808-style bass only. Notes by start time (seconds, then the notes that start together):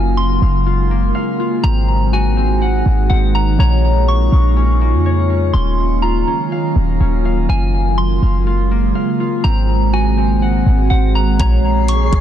Already playing: F#1
0.42 F#1
1.64 G#1
2.86 G#1
3.10 G#1
3.59 A#1
4.32 A#1
4.93 F2
5.54 D#1
6.76 D#1
7.00 D#1
7.49 F#1
8.22 F#1
9.44 G#1
10.66 G#1
10.91 G#1
11.40 A#1
12.12 A#1